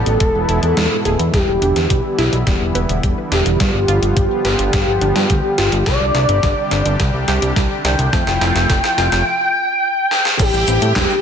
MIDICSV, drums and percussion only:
0, 0, Header, 1, 2, 480
1, 0, Start_track
1, 0, Tempo, 566038
1, 1134, Time_signature, 4, 2, 24, 8
1, 9511, End_track
2, 0, Start_track
2, 0, Title_t, "Drums"
2, 53, Note_on_c, 9, 42, 64
2, 138, Note_off_c, 9, 42, 0
2, 172, Note_on_c, 9, 42, 87
2, 174, Note_on_c, 9, 36, 115
2, 257, Note_off_c, 9, 42, 0
2, 259, Note_off_c, 9, 36, 0
2, 413, Note_on_c, 9, 42, 65
2, 498, Note_off_c, 9, 42, 0
2, 533, Note_on_c, 9, 42, 66
2, 617, Note_off_c, 9, 42, 0
2, 653, Note_on_c, 9, 38, 120
2, 653, Note_on_c, 9, 42, 95
2, 738, Note_off_c, 9, 38, 0
2, 738, Note_off_c, 9, 42, 0
2, 893, Note_on_c, 9, 42, 70
2, 978, Note_off_c, 9, 42, 0
2, 1013, Note_on_c, 9, 42, 70
2, 1098, Note_off_c, 9, 42, 0
2, 1133, Note_on_c, 9, 36, 103
2, 1133, Note_on_c, 9, 38, 46
2, 1133, Note_on_c, 9, 42, 91
2, 1218, Note_off_c, 9, 36, 0
2, 1218, Note_off_c, 9, 38, 0
2, 1218, Note_off_c, 9, 42, 0
2, 1374, Note_on_c, 9, 42, 65
2, 1458, Note_off_c, 9, 42, 0
2, 1493, Note_on_c, 9, 38, 45
2, 1493, Note_on_c, 9, 42, 69
2, 1578, Note_off_c, 9, 38, 0
2, 1578, Note_off_c, 9, 42, 0
2, 1613, Note_on_c, 9, 36, 103
2, 1613, Note_on_c, 9, 42, 90
2, 1698, Note_off_c, 9, 36, 0
2, 1698, Note_off_c, 9, 42, 0
2, 1853, Note_on_c, 9, 38, 50
2, 1853, Note_on_c, 9, 42, 70
2, 1938, Note_off_c, 9, 38, 0
2, 1938, Note_off_c, 9, 42, 0
2, 1974, Note_on_c, 9, 42, 68
2, 2058, Note_off_c, 9, 42, 0
2, 2093, Note_on_c, 9, 36, 95
2, 2093, Note_on_c, 9, 38, 48
2, 2093, Note_on_c, 9, 42, 92
2, 2178, Note_off_c, 9, 36, 0
2, 2178, Note_off_c, 9, 38, 0
2, 2178, Note_off_c, 9, 42, 0
2, 2334, Note_on_c, 9, 42, 67
2, 2418, Note_off_c, 9, 42, 0
2, 2454, Note_on_c, 9, 42, 69
2, 2539, Note_off_c, 9, 42, 0
2, 2573, Note_on_c, 9, 36, 96
2, 2573, Note_on_c, 9, 42, 94
2, 2658, Note_off_c, 9, 36, 0
2, 2658, Note_off_c, 9, 42, 0
2, 2814, Note_on_c, 9, 38, 59
2, 2814, Note_on_c, 9, 42, 69
2, 2899, Note_off_c, 9, 38, 0
2, 2899, Note_off_c, 9, 42, 0
2, 2933, Note_on_c, 9, 42, 71
2, 3018, Note_off_c, 9, 42, 0
2, 3053, Note_on_c, 9, 36, 101
2, 3054, Note_on_c, 9, 38, 57
2, 3054, Note_on_c, 9, 42, 93
2, 3138, Note_off_c, 9, 36, 0
2, 3138, Note_off_c, 9, 38, 0
2, 3138, Note_off_c, 9, 42, 0
2, 3294, Note_on_c, 9, 42, 70
2, 3379, Note_off_c, 9, 42, 0
2, 3414, Note_on_c, 9, 42, 70
2, 3499, Note_off_c, 9, 42, 0
2, 3533, Note_on_c, 9, 36, 101
2, 3533, Note_on_c, 9, 42, 98
2, 3617, Note_off_c, 9, 42, 0
2, 3618, Note_off_c, 9, 36, 0
2, 3772, Note_on_c, 9, 38, 61
2, 3772, Note_on_c, 9, 42, 67
2, 3857, Note_off_c, 9, 38, 0
2, 3857, Note_off_c, 9, 42, 0
2, 3892, Note_on_c, 9, 42, 67
2, 3977, Note_off_c, 9, 42, 0
2, 4012, Note_on_c, 9, 38, 63
2, 4012, Note_on_c, 9, 42, 92
2, 4013, Note_on_c, 9, 36, 97
2, 4097, Note_off_c, 9, 38, 0
2, 4097, Note_off_c, 9, 42, 0
2, 4098, Note_off_c, 9, 36, 0
2, 4252, Note_on_c, 9, 42, 66
2, 4337, Note_off_c, 9, 42, 0
2, 4373, Note_on_c, 9, 38, 60
2, 4373, Note_on_c, 9, 42, 68
2, 4458, Note_off_c, 9, 38, 0
2, 4458, Note_off_c, 9, 42, 0
2, 4493, Note_on_c, 9, 36, 100
2, 4493, Note_on_c, 9, 42, 98
2, 4578, Note_off_c, 9, 36, 0
2, 4578, Note_off_c, 9, 42, 0
2, 4733, Note_on_c, 9, 38, 75
2, 4733, Note_on_c, 9, 42, 70
2, 4817, Note_off_c, 9, 38, 0
2, 4817, Note_off_c, 9, 42, 0
2, 4853, Note_on_c, 9, 42, 72
2, 4937, Note_off_c, 9, 42, 0
2, 4972, Note_on_c, 9, 38, 74
2, 4972, Note_on_c, 9, 42, 94
2, 4973, Note_on_c, 9, 36, 103
2, 5056, Note_off_c, 9, 38, 0
2, 5056, Note_off_c, 9, 42, 0
2, 5058, Note_off_c, 9, 36, 0
2, 5212, Note_on_c, 9, 38, 72
2, 5212, Note_on_c, 9, 42, 65
2, 5297, Note_off_c, 9, 38, 0
2, 5297, Note_off_c, 9, 42, 0
2, 5333, Note_on_c, 9, 42, 71
2, 5418, Note_off_c, 9, 42, 0
2, 5453, Note_on_c, 9, 38, 73
2, 5453, Note_on_c, 9, 42, 94
2, 5454, Note_on_c, 9, 36, 102
2, 5538, Note_off_c, 9, 38, 0
2, 5538, Note_off_c, 9, 42, 0
2, 5539, Note_off_c, 9, 36, 0
2, 5693, Note_on_c, 9, 38, 77
2, 5693, Note_on_c, 9, 42, 67
2, 5778, Note_off_c, 9, 38, 0
2, 5778, Note_off_c, 9, 42, 0
2, 5813, Note_on_c, 9, 42, 65
2, 5898, Note_off_c, 9, 42, 0
2, 5933, Note_on_c, 9, 38, 78
2, 5933, Note_on_c, 9, 42, 89
2, 5934, Note_on_c, 9, 36, 102
2, 6018, Note_off_c, 9, 38, 0
2, 6018, Note_off_c, 9, 42, 0
2, 6019, Note_off_c, 9, 36, 0
2, 6173, Note_on_c, 9, 38, 80
2, 6173, Note_on_c, 9, 42, 67
2, 6258, Note_off_c, 9, 38, 0
2, 6258, Note_off_c, 9, 42, 0
2, 6294, Note_on_c, 9, 42, 70
2, 6379, Note_off_c, 9, 42, 0
2, 6414, Note_on_c, 9, 36, 101
2, 6414, Note_on_c, 9, 38, 88
2, 6414, Note_on_c, 9, 42, 94
2, 6499, Note_off_c, 9, 36, 0
2, 6499, Note_off_c, 9, 38, 0
2, 6499, Note_off_c, 9, 42, 0
2, 6655, Note_on_c, 9, 38, 93
2, 6655, Note_on_c, 9, 42, 70
2, 6740, Note_off_c, 9, 38, 0
2, 6740, Note_off_c, 9, 42, 0
2, 6775, Note_on_c, 9, 42, 72
2, 6859, Note_off_c, 9, 42, 0
2, 6893, Note_on_c, 9, 36, 107
2, 6895, Note_on_c, 9, 38, 89
2, 6895, Note_on_c, 9, 42, 88
2, 6978, Note_off_c, 9, 36, 0
2, 6980, Note_off_c, 9, 38, 0
2, 6980, Note_off_c, 9, 42, 0
2, 7015, Note_on_c, 9, 38, 81
2, 7100, Note_off_c, 9, 38, 0
2, 7136, Note_on_c, 9, 38, 95
2, 7136, Note_on_c, 9, 42, 65
2, 7220, Note_off_c, 9, 38, 0
2, 7220, Note_off_c, 9, 42, 0
2, 7256, Note_on_c, 9, 38, 83
2, 7256, Note_on_c, 9, 42, 66
2, 7341, Note_off_c, 9, 38, 0
2, 7341, Note_off_c, 9, 42, 0
2, 7374, Note_on_c, 9, 36, 105
2, 7375, Note_on_c, 9, 38, 92
2, 7375, Note_on_c, 9, 42, 88
2, 7458, Note_off_c, 9, 36, 0
2, 7460, Note_off_c, 9, 38, 0
2, 7460, Note_off_c, 9, 42, 0
2, 7495, Note_on_c, 9, 38, 88
2, 7580, Note_off_c, 9, 38, 0
2, 7615, Note_on_c, 9, 38, 99
2, 7615, Note_on_c, 9, 42, 66
2, 7700, Note_off_c, 9, 38, 0
2, 7700, Note_off_c, 9, 42, 0
2, 7736, Note_on_c, 9, 38, 88
2, 7736, Note_on_c, 9, 42, 65
2, 7820, Note_off_c, 9, 38, 0
2, 7820, Note_off_c, 9, 42, 0
2, 8575, Note_on_c, 9, 38, 67
2, 8660, Note_off_c, 9, 38, 0
2, 8694, Note_on_c, 9, 38, 79
2, 8779, Note_off_c, 9, 38, 0
2, 8814, Note_on_c, 9, 36, 123
2, 8815, Note_on_c, 9, 42, 95
2, 8815, Note_on_c, 9, 49, 102
2, 8815, Note_on_c, 9, 82, 37
2, 8899, Note_off_c, 9, 36, 0
2, 8900, Note_off_c, 9, 42, 0
2, 8900, Note_off_c, 9, 49, 0
2, 8900, Note_off_c, 9, 82, 0
2, 8935, Note_on_c, 9, 82, 21
2, 9020, Note_off_c, 9, 82, 0
2, 9055, Note_on_c, 9, 42, 69
2, 9055, Note_on_c, 9, 82, 71
2, 9140, Note_off_c, 9, 42, 0
2, 9140, Note_off_c, 9, 82, 0
2, 9176, Note_on_c, 9, 42, 73
2, 9176, Note_on_c, 9, 82, 31
2, 9260, Note_off_c, 9, 42, 0
2, 9260, Note_off_c, 9, 82, 0
2, 9294, Note_on_c, 9, 36, 127
2, 9295, Note_on_c, 9, 38, 119
2, 9295, Note_on_c, 9, 39, 97
2, 9295, Note_on_c, 9, 42, 97
2, 9295, Note_on_c, 9, 82, 39
2, 9379, Note_off_c, 9, 36, 0
2, 9380, Note_off_c, 9, 38, 0
2, 9380, Note_off_c, 9, 39, 0
2, 9380, Note_off_c, 9, 42, 0
2, 9380, Note_off_c, 9, 82, 0
2, 9415, Note_on_c, 9, 82, 20
2, 9500, Note_off_c, 9, 82, 0
2, 9511, End_track
0, 0, End_of_file